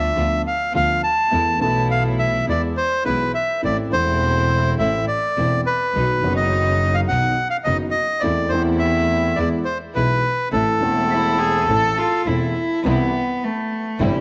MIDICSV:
0, 0, Header, 1, 6, 480
1, 0, Start_track
1, 0, Key_signature, 0, "minor"
1, 0, Tempo, 576923
1, 1096, Time_signature, 4, 2, 24, 8
1, 11819, End_track
2, 0, Start_track
2, 0, Title_t, "Bandoneon"
2, 0, Program_c, 0, 23
2, 0, Note_on_c, 0, 76, 74
2, 349, Note_off_c, 0, 76, 0
2, 391, Note_on_c, 0, 77, 61
2, 607, Note_off_c, 0, 77, 0
2, 629, Note_on_c, 0, 77, 79
2, 846, Note_off_c, 0, 77, 0
2, 862, Note_on_c, 0, 81, 80
2, 1328, Note_off_c, 0, 81, 0
2, 1340, Note_on_c, 0, 81, 68
2, 1561, Note_off_c, 0, 81, 0
2, 1588, Note_on_c, 0, 77, 64
2, 1693, Note_off_c, 0, 77, 0
2, 1823, Note_on_c, 0, 76, 61
2, 2043, Note_off_c, 0, 76, 0
2, 2075, Note_on_c, 0, 74, 62
2, 2179, Note_off_c, 0, 74, 0
2, 2306, Note_on_c, 0, 72, 59
2, 2526, Note_off_c, 0, 72, 0
2, 2537, Note_on_c, 0, 71, 59
2, 2762, Note_off_c, 0, 71, 0
2, 2784, Note_on_c, 0, 76, 57
2, 3006, Note_off_c, 0, 76, 0
2, 3033, Note_on_c, 0, 74, 69
2, 3139, Note_off_c, 0, 74, 0
2, 3267, Note_on_c, 0, 72, 70
2, 3951, Note_off_c, 0, 72, 0
2, 3983, Note_on_c, 0, 76, 65
2, 4205, Note_off_c, 0, 76, 0
2, 4222, Note_on_c, 0, 74, 68
2, 4667, Note_off_c, 0, 74, 0
2, 4711, Note_on_c, 0, 71, 67
2, 5270, Note_off_c, 0, 71, 0
2, 5294, Note_on_c, 0, 75, 69
2, 5777, Note_on_c, 0, 77, 61
2, 5788, Note_off_c, 0, 75, 0
2, 5830, Note_off_c, 0, 77, 0
2, 5891, Note_on_c, 0, 78, 72
2, 6225, Note_off_c, 0, 78, 0
2, 6241, Note_on_c, 0, 77, 64
2, 6297, Note_off_c, 0, 77, 0
2, 6357, Note_on_c, 0, 75, 68
2, 6467, Note_off_c, 0, 75, 0
2, 6581, Note_on_c, 0, 75, 69
2, 6822, Note_on_c, 0, 74, 67
2, 6841, Note_off_c, 0, 75, 0
2, 7063, Note_on_c, 0, 72, 59
2, 7081, Note_off_c, 0, 74, 0
2, 7176, Note_off_c, 0, 72, 0
2, 7313, Note_on_c, 0, 76, 65
2, 7784, Note_on_c, 0, 74, 63
2, 7810, Note_off_c, 0, 76, 0
2, 7895, Note_off_c, 0, 74, 0
2, 8027, Note_on_c, 0, 72, 53
2, 8138, Note_off_c, 0, 72, 0
2, 8278, Note_on_c, 0, 71, 68
2, 8725, Note_off_c, 0, 71, 0
2, 8757, Note_on_c, 0, 69, 66
2, 10169, Note_off_c, 0, 69, 0
2, 11819, End_track
3, 0, Start_track
3, 0, Title_t, "Cello"
3, 0, Program_c, 1, 42
3, 9237, Note_on_c, 1, 64, 65
3, 9473, Note_on_c, 1, 68, 73
3, 9486, Note_off_c, 1, 64, 0
3, 9717, Note_off_c, 1, 68, 0
3, 9726, Note_on_c, 1, 69, 82
3, 9967, Note_on_c, 1, 65, 71
3, 9979, Note_off_c, 1, 69, 0
3, 10205, Note_on_c, 1, 64, 59
3, 10218, Note_off_c, 1, 65, 0
3, 10689, Note_off_c, 1, 64, 0
3, 10705, Note_on_c, 1, 59, 77
3, 11184, Note_on_c, 1, 57, 64
3, 11196, Note_off_c, 1, 59, 0
3, 11658, Note_on_c, 1, 55, 68
3, 11671, Note_off_c, 1, 57, 0
3, 11819, Note_off_c, 1, 55, 0
3, 11819, End_track
4, 0, Start_track
4, 0, Title_t, "String section"
4, 0, Program_c, 2, 48
4, 0, Note_on_c, 2, 59, 61
4, 0, Note_on_c, 2, 62, 58
4, 0, Note_on_c, 2, 65, 61
4, 96, Note_off_c, 2, 59, 0
4, 96, Note_off_c, 2, 62, 0
4, 97, Note_off_c, 2, 65, 0
4, 128, Note_on_c, 2, 59, 37
4, 133, Note_on_c, 2, 62, 33
4, 135, Note_on_c, 2, 65, 42
4, 334, Note_off_c, 2, 59, 0
4, 336, Note_off_c, 2, 62, 0
4, 337, Note_off_c, 2, 65, 0
4, 610, Note_on_c, 2, 65, 46
4, 611, Note_on_c, 2, 59, 40
4, 611, Note_on_c, 2, 62, 40
4, 814, Note_off_c, 2, 65, 0
4, 815, Note_off_c, 2, 59, 0
4, 815, Note_off_c, 2, 62, 0
4, 1088, Note_on_c, 2, 57, 39
4, 1093, Note_on_c, 2, 64, 43
4, 1094, Note_on_c, 2, 59, 36
4, 1294, Note_off_c, 2, 57, 0
4, 1296, Note_off_c, 2, 64, 0
4, 1297, Note_off_c, 2, 59, 0
4, 1326, Note_on_c, 2, 57, 58
4, 1326, Note_on_c, 2, 59, 51
4, 1330, Note_on_c, 2, 64, 63
4, 2015, Note_off_c, 2, 57, 0
4, 2015, Note_off_c, 2, 59, 0
4, 2017, Note_off_c, 2, 64, 0
4, 2054, Note_on_c, 2, 56, 36
4, 2057, Note_on_c, 2, 59, 33
4, 2060, Note_on_c, 2, 64, 39
4, 2257, Note_off_c, 2, 56, 0
4, 2259, Note_off_c, 2, 59, 0
4, 2261, Note_off_c, 2, 64, 0
4, 2543, Note_on_c, 2, 56, 38
4, 2548, Note_on_c, 2, 59, 36
4, 2550, Note_on_c, 2, 64, 42
4, 2744, Note_off_c, 2, 56, 0
4, 2746, Note_off_c, 2, 59, 0
4, 2747, Note_off_c, 2, 64, 0
4, 3024, Note_on_c, 2, 57, 41
4, 3025, Note_on_c, 2, 60, 33
4, 3025, Note_on_c, 2, 64, 41
4, 3225, Note_off_c, 2, 57, 0
4, 3225, Note_off_c, 2, 60, 0
4, 3225, Note_off_c, 2, 64, 0
4, 3263, Note_on_c, 2, 57, 55
4, 3264, Note_on_c, 2, 60, 54
4, 3266, Note_on_c, 2, 64, 61
4, 3946, Note_off_c, 2, 57, 0
4, 3947, Note_off_c, 2, 60, 0
4, 3948, Note_off_c, 2, 64, 0
4, 3977, Note_on_c, 2, 57, 34
4, 3979, Note_on_c, 2, 60, 33
4, 3981, Note_on_c, 2, 64, 42
4, 4180, Note_off_c, 2, 57, 0
4, 4181, Note_off_c, 2, 60, 0
4, 4182, Note_off_c, 2, 64, 0
4, 4464, Note_on_c, 2, 57, 38
4, 4467, Note_on_c, 2, 60, 35
4, 4470, Note_on_c, 2, 64, 46
4, 4664, Note_off_c, 2, 57, 0
4, 4665, Note_off_c, 2, 60, 0
4, 4667, Note_off_c, 2, 64, 0
4, 4947, Note_on_c, 2, 59, 37
4, 4951, Note_on_c, 2, 54, 36
4, 4953, Note_on_c, 2, 63, 42
4, 5144, Note_off_c, 2, 59, 0
4, 5146, Note_off_c, 2, 54, 0
4, 5147, Note_off_c, 2, 63, 0
4, 5183, Note_on_c, 2, 59, 51
4, 5185, Note_on_c, 2, 54, 57
4, 5185, Note_on_c, 2, 63, 67
4, 5861, Note_off_c, 2, 59, 0
4, 5862, Note_off_c, 2, 54, 0
4, 5862, Note_off_c, 2, 63, 0
4, 5895, Note_on_c, 2, 54, 39
4, 5896, Note_on_c, 2, 63, 42
4, 5897, Note_on_c, 2, 59, 34
4, 6095, Note_off_c, 2, 54, 0
4, 6096, Note_off_c, 2, 59, 0
4, 6096, Note_off_c, 2, 63, 0
4, 6370, Note_on_c, 2, 54, 42
4, 6370, Note_on_c, 2, 63, 47
4, 6372, Note_on_c, 2, 59, 34
4, 6571, Note_off_c, 2, 54, 0
4, 6571, Note_off_c, 2, 63, 0
4, 6572, Note_off_c, 2, 59, 0
4, 6838, Note_on_c, 2, 57, 42
4, 6841, Note_on_c, 2, 60, 40
4, 6843, Note_on_c, 2, 64, 46
4, 7043, Note_off_c, 2, 57, 0
4, 7045, Note_off_c, 2, 60, 0
4, 7046, Note_off_c, 2, 64, 0
4, 7074, Note_on_c, 2, 57, 64
4, 7079, Note_on_c, 2, 60, 53
4, 7079, Note_on_c, 2, 64, 64
4, 7760, Note_off_c, 2, 57, 0
4, 7762, Note_off_c, 2, 60, 0
4, 7762, Note_off_c, 2, 64, 0
4, 7791, Note_on_c, 2, 56, 39
4, 7794, Note_on_c, 2, 59, 35
4, 7794, Note_on_c, 2, 64, 41
4, 7997, Note_off_c, 2, 56, 0
4, 7998, Note_off_c, 2, 59, 0
4, 7998, Note_off_c, 2, 64, 0
4, 8275, Note_on_c, 2, 64, 44
4, 8276, Note_on_c, 2, 56, 41
4, 8277, Note_on_c, 2, 59, 35
4, 8478, Note_off_c, 2, 64, 0
4, 8479, Note_off_c, 2, 56, 0
4, 8480, Note_off_c, 2, 59, 0
4, 8753, Note_on_c, 2, 57, 36
4, 8757, Note_on_c, 2, 60, 36
4, 8757, Note_on_c, 2, 64, 44
4, 8957, Note_off_c, 2, 57, 0
4, 8959, Note_off_c, 2, 60, 0
4, 8959, Note_off_c, 2, 64, 0
4, 8995, Note_on_c, 2, 60, 54
4, 8996, Note_on_c, 2, 57, 58
4, 8996, Note_on_c, 2, 64, 67
4, 9681, Note_off_c, 2, 60, 0
4, 9682, Note_off_c, 2, 57, 0
4, 9682, Note_off_c, 2, 64, 0
4, 9719, Note_on_c, 2, 57, 37
4, 9719, Note_on_c, 2, 60, 35
4, 9720, Note_on_c, 2, 64, 38
4, 9922, Note_off_c, 2, 57, 0
4, 9922, Note_off_c, 2, 60, 0
4, 9922, Note_off_c, 2, 64, 0
4, 10202, Note_on_c, 2, 57, 40
4, 10205, Note_on_c, 2, 64, 45
4, 10206, Note_on_c, 2, 60, 36
4, 10406, Note_off_c, 2, 57, 0
4, 10408, Note_off_c, 2, 60, 0
4, 10408, Note_off_c, 2, 64, 0
4, 10692, Note_on_c, 2, 60, 55
4, 10694, Note_on_c, 2, 55, 62
4, 10694, Note_on_c, 2, 64, 73
4, 10893, Note_off_c, 2, 55, 0
4, 10893, Note_off_c, 2, 60, 0
4, 10894, Note_off_c, 2, 64, 0
4, 11650, Note_on_c, 2, 55, 67
4, 11654, Note_on_c, 2, 60, 58
4, 11655, Note_on_c, 2, 64, 71
4, 11819, Note_off_c, 2, 55, 0
4, 11819, Note_off_c, 2, 60, 0
4, 11819, Note_off_c, 2, 64, 0
4, 11819, End_track
5, 0, Start_track
5, 0, Title_t, "Grand piano"
5, 0, Program_c, 3, 0
5, 0, Note_on_c, 3, 38, 63
5, 0, Note_on_c, 3, 50, 66
5, 0, Note_on_c, 3, 53, 49
5, 0, Note_on_c, 3, 59, 50
5, 0, Note_on_c, 3, 65, 65
5, 96, Note_off_c, 3, 53, 0
5, 98, Note_off_c, 3, 50, 0
5, 99, Note_off_c, 3, 38, 0
5, 102, Note_off_c, 3, 59, 0
5, 105, Note_off_c, 3, 65, 0
5, 138, Note_on_c, 3, 50, 41
5, 139, Note_on_c, 3, 53, 34
5, 144, Note_on_c, 3, 38, 42
5, 144, Note_on_c, 3, 59, 33
5, 145, Note_on_c, 3, 65, 37
5, 339, Note_off_c, 3, 53, 0
5, 340, Note_off_c, 3, 50, 0
5, 341, Note_off_c, 3, 38, 0
5, 341, Note_off_c, 3, 59, 0
5, 342, Note_off_c, 3, 65, 0
5, 621, Note_on_c, 3, 50, 44
5, 623, Note_on_c, 3, 38, 43
5, 623, Note_on_c, 3, 53, 33
5, 623, Note_on_c, 3, 59, 34
5, 628, Note_on_c, 3, 65, 38
5, 821, Note_off_c, 3, 38, 0
5, 821, Note_off_c, 3, 53, 0
5, 821, Note_off_c, 3, 59, 0
5, 822, Note_off_c, 3, 50, 0
5, 824, Note_off_c, 3, 65, 0
5, 1097, Note_on_c, 3, 52, 39
5, 1098, Note_on_c, 3, 57, 31
5, 1099, Note_on_c, 3, 40, 42
5, 1100, Note_on_c, 3, 59, 29
5, 1100, Note_on_c, 3, 69, 37
5, 1299, Note_off_c, 3, 40, 0
5, 1299, Note_off_c, 3, 52, 0
5, 1299, Note_off_c, 3, 57, 0
5, 1300, Note_off_c, 3, 59, 0
5, 1300, Note_off_c, 3, 69, 0
5, 1320, Note_on_c, 3, 52, 48
5, 1332, Note_on_c, 3, 57, 47
5, 1340, Note_on_c, 3, 35, 59
5, 1340, Note_on_c, 3, 47, 60
5, 1344, Note_on_c, 3, 59, 51
5, 1357, Note_on_c, 3, 69, 59
5, 2012, Note_off_c, 3, 52, 0
5, 2018, Note_off_c, 3, 57, 0
5, 2022, Note_off_c, 3, 35, 0
5, 2022, Note_off_c, 3, 47, 0
5, 2024, Note_off_c, 3, 59, 0
5, 2031, Note_off_c, 3, 69, 0
5, 2053, Note_on_c, 3, 40, 38
5, 2054, Note_on_c, 3, 52, 40
5, 2055, Note_on_c, 3, 56, 30
5, 2057, Note_on_c, 3, 59, 30
5, 2057, Note_on_c, 3, 68, 38
5, 2257, Note_off_c, 3, 40, 0
5, 2258, Note_off_c, 3, 52, 0
5, 2258, Note_off_c, 3, 56, 0
5, 2259, Note_off_c, 3, 59, 0
5, 2259, Note_off_c, 3, 68, 0
5, 2539, Note_on_c, 3, 52, 34
5, 2540, Note_on_c, 3, 47, 39
5, 2541, Note_on_c, 3, 35, 40
5, 2541, Note_on_c, 3, 68, 38
5, 2542, Note_on_c, 3, 59, 30
5, 2543, Note_on_c, 3, 56, 29
5, 2741, Note_off_c, 3, 52, 0
5, 2742, Note_off_c, 3, 47, 0
5, 2743, Note_off_c, 3, 35, 0
5, 2743, Note_off_c, 3, 59, 0
5, 2743, Note_off_c, 3, 68, 0
5, 2744, Note_off_c, 3, 56, 0
5, 3015, Note_on_c, 3, 52, 34
5, 3016, Note_on_c, 3, 45, 39
5, 3017, Note_on_c, 3, 33, 37
5, 3017, Note_on_c, 3, 57, 30
5, 3022, Note_on_c, 3, 60, 31
5, 3023, Note_on_c, 3, 69, 35
5, 3220, Note_off_c, 3, 52, 0
5, 3221, Note_off_c, 3, 33, 0
5, 3221, Note_off_c, 3, 45, 0
5, 3221, Note_off_c, 3, 57, 0
5, 3224, Note_off_c, 3, 60, 0
5, 3224, Note_off_c, 3, 69, 0
5, 3246, Note_on_c, 3, 52, 56
5, 3256, Note_on_c, 3, 57, 44
5, 3261, Note_on_c, 3, 28, 59
5, 3264, Note_on_c, 3, 40, 58
5, 3268, Note_on_c, 3, 60, 46
5, 3278, Note_on_c, 3, 69, 53
5, 3938, Note_off_c, 3, 52, 0
5, 3943, Note_off_c, 3, 57, 0
5, 3945, Note_off_c, 3, 28, 0
5, 3947, Note_off_c, 3, 40, 0
5, 3949, Note_off_c, 3, 60, 0
5, 3954, Note_off_c, 3, 69, 0
5, 3992, Note_on_c, 3, 45, 41
5, 3992, Note_on_c, 3, 52, 34
5, 3994, Note_on_c, 3, 33, 36
5, 3994, Note_on_c, 3, 57, 30
5, 3996, Note_on_c, 3, 60, 33
5, 3996, Note_on_c, 3, 69, 39
5, 4188, Note_off_c, 3, 45, 0
5, 4188, Note_off_c, 3, 52, 0
5, 4189, Note_off_c, 3, 33, 0
5, 4189, Note_off_c, 3, 57, 0
5, 4189, Note_off_c, 3, 60, 0
5, 4190, Note_off_c, 3, 69, 0
5, 4470, Note_on_c, 3, 52, 36
5, 4472, Note_on_c, 3, 40, 40
5, 4473, Note_on_c, 3, 60, 34
5, 4474, Note_on_c, 3, 28, 39
5, 4474, Note_on_c, 3, 57, 34
5, 4476, Note_on_c, 3, 69, 37
5, 4667, Note_off_c, 3, 52, 0
5, 4668, Note_off_c, 3, 28, 0
5, 4668, Note_off_c, 3, 40, 0
5, 4668, Note_off_c, 3, 60, 0
5, 4669, Note_off_c, 3, 57, 0
5, 4670, Note_off_c, 3, 69, 0
5, 4954, Note_on_c, 3, 51, 34
5, 4954, Note_on_c, 3, 54, 29
5, 4955, Note_on_c, 3, 35, 40
5, 4957, Note_on_c, 3, 47, 40
5, 4957, Note_on_c, 3, 59, 31
5, 4961, Note_on_c, 3, 66, 41
5, 5147, Note_off_c, 3, 54, 0
5, 5148, Note_off_c, 3, 35, 0
5, 5148, Note_off_c, 3, 51, 0
5, 5149, Note_off_c, 3, 47, 0
5, 5149, Note_off_c, 3, 59, 0
5, 5151, Note_off_c, 3, 66, 0
5, 5173, Note_on_c, 3, 51, 54
5, 5186, Note_on_c, 3, 54, 48
5, 5189, Note_on_c, 3, 30, 62
5, 5193, Note_on_c, 3, 59, 44
5, 5194, Note_on_c, 3, 42, 64
5, 5208, Note_on_c, 3, 66, 57
5, 5856, Note_off_c, 3, 51, 0
5, 5863, Note_off_c, 3, 54, 0
5, 5864, Note_off_c, 3, 30, 0
5, 5866, Note_off_c, 3, 59, 0
5, 5867, Note_off_c, 3, 42, 0
5, 5874, Note_off_c, 3, 66, 0
5, 5898, Note_on_c, 3, 51, 32
5, 5898, Note_on_c, 3, 54, 33
5, 5899, Note_on_c, 3, 35, 39
5, 5900, Note_on_c, 3, 47, 39
5, 5900, Note_on_c, 3, 59, 34
5, 5901, Note_on_c, 3, 66, 37
5, 6096, Note_off_c, 3, 54, 0
5, 6097, Note_off_c, 3, 35, 0
5, 6097, Note_off_c, 3, 51, 0
5, 6097, Note_off_c, 3, 59, 0
5, 6098, Note_off_c, 3, 47, 0
5, 6098, Note_off_c, 3, 66, 0
5, 6375, Note_on_c, 3, 30, 39
5, 6376, Note_on_c, 3, 42, 42
5, 6378, Note_on_c, 3, 51, 37
5, 6378, Note_on_c, 3, 54, 31
5, 6378, Note_on_c, 3, 66, 40
5, 6380, Note_on_c, 3, 59, 33
5, 6573, Note_off_c, 3, 30, 0
5, 6574, Note_off_c, 3, 42, 0
5, 6575, Note_off_c, 3, 51, 0
5, 6575, Note_off_c, 3, 54, 0
5, 6575, Note_off_c, 3, 66, 0
5, 6576, Note_off_c, 3, 59, 0
5, 6852, Note_on_c, 3, 52, 42
5, 6854, Note_on_c, 3, 57, 33
5, 6855, Note_on_c, 3, 40, 40
5, 6855, Note_on_c, 3, 60, 34
5, 6855, Note_on_c, 3, 69, 37
5, 7052, Note_off_c, 3, 40, 0
5, 7052, Note_off_c, 3, 52, 0
5, 7052, Note_off_c, 3, 57, 0
5, 7052, Note_off_c, 3, 60, 0
5, 7052, Note_off_c, 3, 69, 0
5, 7071, Note_on_c, 3, 52, 55
5, 7084, Note_off_c, 3, 52, 0
5, 7088, Note_on_c, 3, 57, 50
5, 7092, Note_on_c, 3, 40, 66
5, 7093, Note_on_c, 3, 52, 58
5, 7099, Note_on_c, 3, 60, 52
5, 7106, Note_on_c, 3, 69, 59
5, 7767, Note_off_c, 3, 57, 0
5, 7769, Note_off_c, 3, 40, 0
5, 7769, Note_off_c, 3, 52, 0
5, 7772, Note_off_c, 3, 60, 0
5, 7776, Note_off_c, 3, 69, 0
5, 7805, Note_on_c, 3, 52, 45
5, 7806, Note_on_c, 3, 56, 33
5, 7807, Note_on_c, 3, 59, 35
5, 7808, Note_on_c, 3, 40, 43
5, 7813, Note_on_c, 3, 68, 38
5, 8004, Note_off_c, 3, 52, 0
5, 8004, Note_off_c, 3, 56, 0
5, 8005, Note_off_c, 3, 40, 0
5, 8005, Note_off_c, 3, 59, 0
5, 8008, Note_off_c, 3, 68, 0
5, 8286, Note_on_c, 3, 35, 42
5, 8286, Note_on_c, 3, 52, 33
5, 8288, Note_on_c, 3, 56, 33
5, 8289, Note_on_c, 3, 47, 41
5, 8289, Note_on_c, 3, 68, 38
5, 8290, Note_on_c, 3, 59, 35
5, 8484, Note_off_c, 3, 35, 0
5, 8484, Note_off_c, 3, 52, 0
5, 8485, Note_off_c, 3, 56, 0
5, 8486, Note_off_c, 3, 47, 0
5, 8486, Note_off_c, 3, 59, 0
5, 8486, Note_off_c, 3, 68, 0
5, 8760, Note_on_c, 3, 52, 36
5, 8761, Note_on_c, 3, 57, 30
5, 8761, Note_on_c, 3, 60, 31
5, 8762, Note_on_c, 3, 33, 42
5, 8762, Note_on_c, 3, 45, 42
5, 8762, Note_on_c, 3, 69, 40
5, 8961, Note_off_c, 3, 52, 0
5, 8961, Note_off_c, 3, 57, 0
5, 8961, Note_off_c, 3, 60, 0
5, 8962, Note_off_c, 3, 33, 0
5, 8962, Note_off_c, 3, 45, 0
5, 8962, Note_off_c, 3, 69, 0
5, 8987, Note_on_c, 3, 52, 53
5, 8998, Note_on_c, 3, 57, 51
5, 9001, Note_on_c, 3, 40, 66
5, 9002, Note_on_c, 3, 28, 64
5, 9005, Note_on_c, 3, 60, 51
5, 9019, Note_on_c, 3, 69, 55
5, 9677, Note_off_c, 3, 52, 0
5, 9683, Note_off_c, 3, 57, 0
5, 9684, Note_off_c, 3, 40, 0
5, 9685, Note_off_c, 3, 28, 0
5, 9686, Note_off_c, 3, 60, 0
5, 9694, Note_off_c, 3, 69, 0
5, 9720, Note_on_c, 3, 52, 34
5, 9724, Note_on_c, 3, 33, 41
5, 9725, Note_on_c, 3, 57, 30
5, 9726, Note_on_c, 3, 45, 39
5, 9726, Note_on_c, 3, 60, 29
5, 9729, Note_on_c, 3, 69, 38
5, 9922, Note_off_c, 3, 52, 0
5, 9925, Note_off_c, 3, 33, 0
5, 9925, Note_off_c, 3, 45, 0
5, 9925, Note_off_c, 3, 57, 0
5, 9926, Note_off_c, 3, 60, 0
5, 9927, Note_off_c, 3, 69, 0
5, 10207, Note_on_c, 3, 52, 35
5, 10207, Note_on_c, 3, 57, 30
5, 10208, Note_on_c, 3, 28, 41
5, 10209, Note_on_c, 3, 60, 31
5, 10210, Note_on_c, 3, 40, 39
5, 10214, Note_on_c, 3, 69, 39
5, 10409, Note_off_c, 3, 28, 0
5, 10409, Note_off_c, 3, 52, 0
5, 10409, Note_off_c, 3, 57, 0
5, 10410, Note_off_c, 3, 40, 0
5, 10410, Note_off_c, 3, 60, 0
5, 10413, Note_off_c, 3, 69, 0
5, 10689, Note_on_c, 3, 48, 66
5, 10693, Note_on_c, 3, 52, 51
5, 10694, Note_on_c, 3, 36, 65
5, 10697, Note_on_c, 3, 55, 50
5, 10697, Note_on_c, 3, 64, 61
5, 10893, Note_off_c, 3, 52, 0
5, 10894, Note_off_c, 3, 36, 0
5, 10894, Note_off_c, 3, 48, 0
5, 10895, Note_off_c, 3, 55, 0
5, 10895, Note_off_c, 3, 64, 0
5, 11645, Note_on_c, 3, 48, 59
5, 11648, Note_on_c, 3, 31, 70
5, 11649, Note_on_c, 3, 43, 64
5, 11649, Note_on_c, 3, 55, 52
5, 11650, Note_on_c, 3, 52, 54
5, 11652, Note_on_c, 3, 64, 61
5, 11819, Note_off_c, 3, 31, 0
5, 11819, Note_off_c, 3, 43, 0
5, 11819, Note_off_c, 3, 48, 0
5, 11819, Note_off_c, 3, 52, 0
5, 11819, Note_off_c, 3, 55, 0
5, 11819, Note_off_c, 3, 64, 0
5, 11819, End_track
6, 0, Start_track
6, 0, Title_t, "Double bass"
6, 0, Program_c, 4, 43
6, 0, Note_on_c, 4, 38, 70
6, 97, Note_off_c, 4, 38, 0
6, 132, Note_on_c, 4, 38, 52
6, 335, Note_off_c, 4, 38, 0
6, 616, Note_on_c, 4, 38, 42
6, 818, Note_off_c, 4, 38, 0
6, 1099, Note_on_c, 4, 40, 45
6, 1300, Note_off_c, 4, 40, 0
6, 1341, Note_on_c, 4, 35, 70
6, 2022, Note_off_c, 4, 35, 0
6, 2056, Note_on_c, 4, 40, 43
6, 2258, Note_off_c, 4, 40, 0
6, 2538, Note_on_c, 4, 35, 42
6, 2741, Note_off_c, 4, 35, 0
6, 3031, Note_on_c, 4, 33, 41
6, 3228, Note_off_c, 4, 33, 0
6, 3267, Note_on_c, 4, 28, 69
6, 3948, Note_off_c, 4, 28, 0
6, 3986, Note_on_c, 4, 33, 50
6, 4185, Note_off_c, 4, 33, 0
6, 4473, Note_on_c, 4, 28, 42
6, 4668, Note_off_c, 4, 28, 0
6, 4942, Note_on_c, 4, 35, 45
6, 5141, Note_off_c, 4, 35, 0
6, 5181, Note_on_c, 4, 30, 69
6, 5860, Note_off_c, 4, 30, 0
6, 5907, Note_on_c, 4, 35, 46
6, 6101, Note_off_c, 4, 35, 0
6, 6378, Note_on_c, 4, 30, 49
6, 6575, Note_off_c, 4, 30, 0
6, 6847, Note_on_c, 4, 40, 48
6, 7048, Note_off_c, 4, 40, 0
6, 7085, Note_on_c, 4, 40, 66
6, 7765, Note_off_c, 4, 40, 0
6, 7802, Note_on_c, 4, 40, 51
6, 8002, Note_off_c, 4, 40, 0
6, 8280, Note_on_c, 4, 35, 46
6, 8481, Note_off_c, 4, 35, 0
6, 8753, Note_on_c, 4, 33, 46
6, 8957, Note_off_c, 4, 33, 0
6, 8995, Note_on_c, 4, 28, 67
6, 9682, Note_off_c, 4, 28, 0
6, 9709, Note_on_c, 4, 33, 46
6, 9917, Note_off_c, 4, 33, 0
6, 10201, Note_on_c, 4, 28, 43
6, 10406, Note_off_c, 4, 28, 0
6, 10685, Note_on_c, 4, 36, 73
6, 10889, Note_off_c, 4, 36, 0
6, 11645, Note_on_c, 4, 31, 77
6, 11819, Note_off_c, 4, 31, 0
6, 11819, End_track
0, 0, End_of_file